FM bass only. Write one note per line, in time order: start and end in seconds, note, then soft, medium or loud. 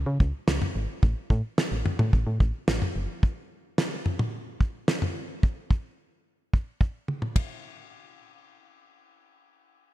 0.06 0.18 C#3 loud
0.20 0.32 C#2 loud
0.48 0.59 C#2 medium
0.75 0.87 G#1 medium
1.03 1.14 A1 loud
1.30 1.42 A2 loud
1.72 1.83 A1 medium
1.99 2.11 A2 loud
2.13 2.25 A1 loud
2.27 2.38 A2 medium
2.40 2.52 A1 loud
2.68 2.80 A1 medium
2.96 3.07 F#1 medium